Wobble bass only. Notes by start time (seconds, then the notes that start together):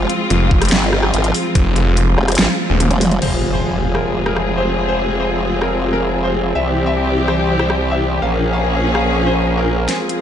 0.72 G1
1.14 G#1
2.18 F1
2.39 G#1
2.91 F1
3.22 F1
6.55 C2
8.22 A#1